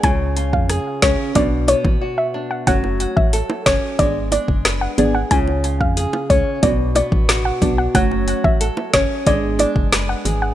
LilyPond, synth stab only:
\new Staff \with { instrumentName = "Synth stab" } { \time 4/4 \key fis \minor \tempo 4 = 91 <gis cis' eis' cis''>4 r4 <b d' fis' d''>4 r4 | <a cis' fis' cis''>4 r4 <b d' gis' d''>4. <b d' gis' d''>8 | <gis cis' eis' cis''>4 r4 <b d' fis' d''>4. <b d' fis' d''>8 | <a cis' fis' cis''>4 r4 <b d' gis' d''>2 | }